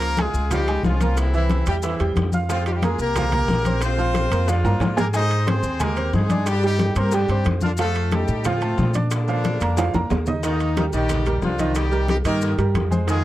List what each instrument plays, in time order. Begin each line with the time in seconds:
Already playing: upright bass C#2, upright piano F3 F4 F5, horn section A#3 F4 A#4
0.01 high conga, high timbale, maracas
0.17 upright piano G#3 G#4 G#5, horn section G#3 F4 G#4, high bongo, high conga, high timbale, maracas
0.34 upright bass C#2, high conga, maracas
0.51 upright piano F3 F4 F5, horn section G3 D#4 G4, high bongo, high conga, low conga, high timbale, maracas
0.67 upright piano G#3 G#4 G#5, high conga, high timbale, maracas
0.83 upright bass C2, horn section F3 C#4 F4, high bongo, low bongo, high conga, maracas
1.00 upright piano A#3 A#4 A#5, high conga, high timbale, maracas
1.17 horn section E3 C4 E4, high bongo, high conga, high timbale, maracas
1.34 upright piano E3 E4 E5, horn section E3 C4 E4, high bongo, high conga, maracas
1.49 high bongo, high conga, high timbale, maracas
1.66 upright bass E2, upright piano G3 G4 G5, horn section G3 E4 G4, high bongo, high conga, high timbale, maracas
1.82 upright piano E3 E4 E5, horn section E3 C4 E4, high bongo, high conga, maracas
2.00 upright bass E2, upright piano G3 G4 G5, high conga, high timbale, maracas
2.16 upright bass F2, high bongo, low bongo, high conga, high timbale, maracas
2.32 upright piano F4 F5 F6, high bongo, high conga, maracas
2.49 upright piano F3 F4 F5, horn section F3 C4 F4, high bongo, high timbale, maracas
2.66 horn section G3 D#4 G4, high conga, high timbale, maracas
2.72 horn section F3 G3 D#4 F4 G4
2.82 horn section G#3 F4 G#4, upright piano A#3 A#4 A#5, high bongo, high conga, high timbale, maracas
2.99 upright bass C2, horn section A#3 G4 A#4, high conga, maracas
3.16 upright piano F3 F4 F5, high bongo, high conga, low conga, high timbale, maracas
3.32 upright piano A#3 A#4 A#5, high conga, low conga, high timbale, maracas
3.48 upright bass A#1, high bongo, low bongo, high conga, maracas
3.65 upright piano C4 C5 C6, high conga, high timbale, maracas
3.81 horn section C4 F4 C5, high bongo, high conga, high timbale, maracas
3.97 upright piano F3 F4 F5, high bongo, high conga, maracas
4.14 high bongo, high conga, high timbale, maracas
4.31 upright bass F2, upright piano A#3 A#4 A#5, high bongo, high conga, high timbale, maracas
4.48 upright piano F3 F4 F5, horn section F3 D4 F4, high bongo, high conga, maracas
4.64 upright bass G2, upright piano A#3 A#4 A#5, high conga, high timbale, maracas
4.80 upright bass G#2, high bongo, low bongo, high conga, high timbale, maracas
4.97 horn section A#3 G4 A#4, upright piano G#4 G#5 G#6, high bongo, high conga, low timbale, maracas
5.14 upright piano G#3 G#4 G#5, horn section D#4 C5 D#5, high bongo, high conga, high timbale, maracas
5.30 high conga, high timbale, maracas
5.47 upright piano C4 C5 C6, horn section C4 G#4 C5, high bongo, high conga, high timbale, maracas
5.62 upright bass D#2, high conga, maracas
5.80 upright piano G#3 G#4 G#5, horn section A#3 G4 A#4, high bongo, high conga, low conga, high timbale, maracas
5.96 upright piano C4 C5 C6, high conga, high timbale, maracas
6.13 upright bass G2, horn section G#3 D#4 G#4, high bongo, low bongo, high conga, maracas
6.30 upright piano D4 D5 D6, high conga, high timbale, maracas
6.46 horn section G3 D4 G4, high bongo, high conga, high timbale, maracas
6.63 upright piano G3 G4 G5, horn section G3 D#4 G4, high bongo, maracas
6.79 high bongo, high conga, high timbale, maracas
6.95 upright bass G2, horn section A#3 G4 A#4, upright piano C4 C5 C6, high bongo, high timbale, maracas
7.11 upright piano G3 G4 G5, horn section G3 D4 G4, high bongo, high conga, maracas
7.28 upright bass G2, upright piano C4 C5 C6, high conga, high timbale, maracas
7.45 upright bass F2, high bongo, low bongo, high conga, high timbale, maracas
7.61 horn section D3 A#3 D4, upright piano F4 F5 F6, high bongo, high conga, maracas
7.77 upright piano F3 F4 F5, horn section A3 F4 A4, high bongo, high conga, high timbale, maracas
7.94 high conga, high timbale, maracas
8.11 horn section G3 D#4 G4, upright piano A3 A4 A5, high bongo, high conga, high timbale, maracas
8.28 upright bass A2, high conga, maracas
8.44 upright piano F3 F4 F5, horn section F3 C4 F4, high bongo, high conga, low conga, high timbale, maracas
8.61 upright piano A3 A4 A5, high conga, high timbale, maracas
8.78 upright bass A#2, high bongo, low bongo, high conga, maracas
8.94 upright piano D4 D5 D6, high conga, high timbale, maracas
9.11 horn section D3 A#3 D4, high bongo, high conga, high timbale, maracas
9.28 upright piano F3 F4 F5, high bongo, high conga, maracas
9.44 high bongo, high conga, high timbale, maracas
9.61 upright bass F2, upright piano A#3 A#4 A#5, high bongo, high conga, high timbale, maracas
9.77 upright piano F3 F4 F5, high bongo, high conga, high timbale, maracas
9.94 upright bass F2, upright piano A#3 A#4 A#5, high conga, high timbale, maracas
10.10 upright bass D#2, high bongo, low bongo, high conga, low timbale, maracas
10.26 upright piano D#4 D#5 D#6, high bongo, low conga, low timbale, maracas
10.43 upright piano D#3 D#4 D#5, horn section D#3 A#3 D#4, high bongo, high conga, high timbale, maracas
10.60 high conga, high timbale, maracas
10.77 horn section D#3 A#3 D#4, upright piano G3 G4 A#4, high bongo, high conga, high timbale, maracas
10.93 upright bass A#1, upright piano D#3 D#4 D#5, horn section G3 D#4 G4, high conga, maracas
11.09 high bongo, high conga, low conga, high timbale, maracas
11.26 upright piano G3 G4 A#4, high conga, low conga, high timbale, maracas
11.42 upright bass C2, horn section F3 D4 F4, high bongo, low bongo, high conga, maracas
11.59 upright piano D#3 D#4 D#5, high conga, high timbale, maracas
11.75 horn section G3 D#4 G4, high bongo, high conga, high timbale, maracas
11.91 upright piano G3 G4 A#4, high bongo, high conga, maracas
12.08 horn section G3 D#4 G4, high bongo, high conga, high timbale, maracas
12.24 upright bass G2, upright piano D#3 D#4 D#5, horn section A#3 G4 A#4, high bongo, high conga, high timbale, maracas
12.41 high bongo, high conga, maracas
12.58 upright bass G2, upright piano G3 G4 A#4, high conga, high timbale, maracas
12.74 upright bass F2, high bongo, low bongo, high conga, high timbale, maracas
12.91 upright piano G#3 G#4 C5, high bongo, high conga, maracas
13.07 upright piano D#3 D#4 D#5, horn section G#3 F4 G#4, high bongo, high conga, high timbale, maracas